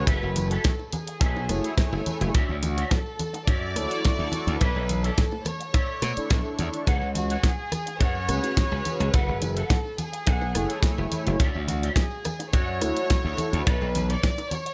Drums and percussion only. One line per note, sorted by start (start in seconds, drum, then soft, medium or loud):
0.07 kick loud
0.07 closed hi-hat medium
0.07 tambourine medium
0.23 tambourine soft
0.36 open hi-hat loud
0.36 tambourine medium
0.36 high bongo medium
0.36 low conga medium
0.51 closed hi-hat medium
0.51 tambourine soft
0.64 kick loud
0.64 snare loud
0.64 closed hi-hat medium
0.64 tambourine soft
0.79 tambourine soft
0.79 high bongo medium
0.92 open hi-hat loud
0.92 tambourine medium
0.92 low conga loud
1.07 closed hi-hat medium
1.07 tambourine soft
1.21 kick loud
1.21 closed hi-hat medium
1.21 tambourine soft
1.36 tambourine soft
1.36 high bongo medium
1.49 cross-stick medium
1.49 open hi-hat loud
1.49 tambourine medium
1.49 high conga loud
1.64 closed hi-hat medium
1.64 tambourine soft
1.78 kick loud
1.78 snare loud
1.78 closed hi-hat medium
1.78 tambourine medium
1.78 high bongo medium
1.93 tambourine soft
2.06 open hi-hat medium
2.06 tambourine medium
2.06 low conga loud
2.21 closed hi-hat medium
2.21 tambourine soft
2.35 kick loud
2.35 closed hi-hat medium
2.35 tambourine medium
2.35 high bongo medium
2.49 tambourine soft
2.63 open hi-hat loud
2.63 tambourine medium
2.63 low conga loud
2.78 closed hi-hat medium
2.78 tambourine soft
2.78 high bongo soft
2.91 kick loud
2.91 snare loud
2.91 closed hi-hat medium
2.91 tambourine medium
3.06 tambourine soft
3.19 open hi-hat loud
3.19 tambourine medium
3.19 low conga medium
3.34 closed hi-hat medium
3.34 tambourine soft
3.34 high bongo medium
3.47 kick loud
3.47 closed hi-hat medium
3.47 tambourine medium
3.63 tambourine soft
3.76 cross-stick medium
3.76 open hi-hat loud
3.76 tambourine medium
3.76 high bongo medium
3.76 high conga loud
3.91 closed hi-hat soft
3.91 tambourine soft
4.04 kick loud
4.04 snare loud
4.04 closed hi-hat medium
4.04 tambourine soft
4.19 tambourine soft
4.32 open hi-hat loud
4.32 tambourine medium
4.32 high bongo medium
4.32 low conga loud
4.47 closed hi-hat soft
4.47 tambourine soft
4.60 kick loud
4.60 closed hi-hat medium
4.60 tambourine medium
4.75 tambourine soft
4.75 high bongo soft
4.89 open hi-hat loud
4.89 tambourine medium
4.89 low conga medium
5.04 closed hi-hat soft
5.04 tambourine soft
5.18 kick loud
5.18 snare loud
5.18 closed hi-hat medium
5.18 tambourine medium
5.31 tambourine soft
5.31 high bongo medium
5.31 high conga medium
5.45 cross-stick medium
5.45 open hi-hat loud
5.45 tambourine medium
5.45 low conga medium
5.60 closed hi-hat soft
5.60 tambourine soft
5.74 kick loud
5.74 closed hi-hat medium
5.74 tambourine medium
5.74 high bongo medium
5.88 tambourine soft
6.02 cross-stick medium
6.02 open hi-hat loud
6.02 tambourine loud
6.02 high conga medium
6.16 closed hi-hat medium
6.16 tambourine soft
6.30 kick loud
6.30 snare loud
6.30 closed hi-hat medium
6.30 tambourine medium
6.30 high bongo medium
6.45 tambourine soft
6.59 open hi-hat medium
6.59 tambourine medium
6.59 low conga loud
6.73 closed hi-hat soft
6.73 tambourine soft
6.73 high bongo soft
6.86 kick loud
6.86 closed hi-hat medium
6.86 tambourine medium
6.86 high bongo soft
7.01 tambourine soft
7.15 open hi-hat loud
7.15 tambourine medium
7.15 low conga medium
7.30 closed hi-hat medium
7.30 tambourine soft
7.43 kick loud
7.43 snare loud
7.43 closed hi-hat medium
7.43 tambourine medium
7.43 high bongo medium
7.59 tambourine soft
7.72 cross-stick medium
7.72 open hi-hat medium
7.72 tambourine loud
7.72 low conga loud
7.87 closed hi-hat medium
7.87 tambourine soft
7.87 high bongo soft
8.00 kick loud
8.00 closed hi-hat medium
8.00 tambourine medium
8.15 tambourine soft
8.28 cross-stick medium
8.28 open hi-hat loud
8.28 tambourine loud
8.28 high conga medium
8.43 closed hi-hat soft
8.43 tambourine soft
8.43 high bongo medium
8.57 kick loud
8.57 snare loud
8.57 closed hi-hat medium
8.57 tambourine medium
8.72 tambourine soft
8.85 open hi-hat medium
8.85 tambourine loud
8.85 high bongo soft
8.85 low conga medium
9.00 closed hi-hat soft
9.00 tambourine soft
9.13 kick loud
9.13 closed hi-hat medium
9.13 tambourine soft
9.28 tambourine soft
9.42 open hi-hat loud
9.42 tambourine loud
9.42 high bongo medium
9.42 low conga medium
9.56 closed hi-hat medium
9.56 tambourine soft
9.69 kick loud
9.69 snare loud
9.69 closed hi-hat medium
9.69 tambourine medium
9.85 tambourine soft
9.85 high bongo medium
9.98 open hi-hat medium
9.98 tambourine loud
9.98 low conga medium
10.13 closed hi-hat medium
10.13 tambourine soft
10.27 kick loud
10.27 closed hi-hat medium
10.27 tambourine medium
10.41 tambourine soft
10.41 high bongo medium
10.55 cross-stick medium
10.55 open hi-hat loud
10.55 tambourine medium
10.55 high conga medium
10.70 closed hi-hat medium
10.70 tambourine soft
10.83 kick loud
10.83 snare loud
10.83 closed hi-hat medium
10.83 tambourine medium
10.83 high bongo medium
10.98 tambourine soft
11.12 open hi-hat medium
11.12 tambourine loud
11.12 low conga medium
11.26 closed hi-hat medium
11.26 tambourine soft
11.39 kick loud
11.39 closed hi-hat medium
11.39 tambourine medium
11.39 high bongo medium
11.55 tambourine soft
11.68 open hi-hat loud
11.68 tambourine loud
11.68 low conga medium
11.83 closed hi-hat medium
11.83 tambourine soft
11.83 high bongo medium
11.96 kick loud
11.96 snare loud
11.96 closed hi-hat medium
11.96 tambourine medium
12.11 tambourine soft
12.25 cross-stick medium
12.25 open hi-hat medium
12.25 tambourine loud
12.25 low conga medium
12.40 closed hi-hat medium
12.40 tambourine soft
12.40 high bongo medium
12.53 kick loud
12.53 closed hi-hat medium
12.53 tambourine medium
12.68 tambourine soft
12.81 cross-stick medium
12.81 open hi-hat loud
12.81 tambourine loud
12.81 high bongo medium
12.81 high conga medium
12.96 closed hi-hat medium
12.96 tambourine soft
13.10 kick loud
13.10 snare loud
13.10 closed hi-hat medium
13.10 tambourine medium
13.25 tambourine soft
13.37 open hi-hat medium
13.37 tambourine medium
13.37 high bongo medium
13.37 low conga loud
13.53 closed hi-hat medium
13.53 tambourine soft
13.67 kick loud
13.67 closed hi-hat medium
13.67 tambourine medium
13.82 tambourine soft
13.82 high bongo medium
13.95 open hi-hat loud
13.95 tambourine loud
13.95 low conga loud
14.10 closed hi-hat medium
14.10 tambourine soft
14.23 kick loud
14.23 snare loud
14.23 closed hi-hat medium
14.23 tambourine medium
14.38 closed hi-hat soft
14.38 tambourine soft
14.38 high bongo medium
14.51 open hi-hat medium
14.51 tambourine medium
14.51 low conga medium
14.66 closed hi-hat medium
14.66 tambourine soft